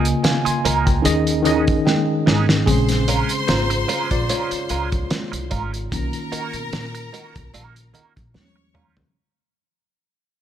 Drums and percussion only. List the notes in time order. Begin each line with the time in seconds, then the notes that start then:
0.05 closed hi-hat
0.24 snare, closed hi-hat, high conga
0.46 closed hi-hat
0.65 closed hi-hat, muted conga
0.87 kick, closed hi-hat
1.05 closed hi-hat, muted conga
1.27 closed hi-hat
1.45 closed hi-hat, low conga
1.67 kick, closed hi-hat
1.87 snare, high conga
2.27 snare, high conga
2.49 snare
2.67 kick, closed hi-hat, muted conga
2.89 snare, closed hi-hat
3.08 closed hi-hat
3.29 closed hi-hat
3.48 snare, closed hi-hat, high conga
3.70 closed hi-hat
3.89 closed hi-hat, muted conga
4.11 kick, closed hi-hat
4.29 closed hi-hat, muted conga
4.51 closed hi-hat
4.69 closed hi-hat
4.92 kick, closed hi-hat
5.10 snare, closed hi-hat, high conga
5.33 closed hi-hat
5.51 kick, closed hi-hat, high conga
5.74 closed hi-hat
5.92 kick, closed hi-hat, muted conga
6.13 closed hi-hat
6.32 closed hi-hat
6.53 closed hi-hat
6.73 snare, closed hi-hat, high conga
6.95 closed hi-hat
7.14 closed hi-hat, muted conga
7.36 kick, closed hi-hat
7.54 closed hi-hat, muted conga
7.76 closed hi-hat
7.94 closed hi-hat, low conga
8.17 kick, closed hi-hat
8.34 snare, high conga
8.75 mid tom, high conga
8.97 floor tom